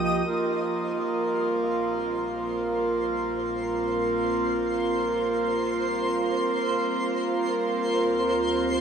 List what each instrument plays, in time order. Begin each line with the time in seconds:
Already playing: synth drone C2, ambient pad F3 A#3 D#4 G4, synth texture D#5 D#6
0.25 synth drone A#1, ambient pad G3, harmonium A#3 F4, synth texture C5 C6
0.36 ambient pad C4
0.56 ambient pad F4
1.20 ambient pad A#4
6.94 synth drone D2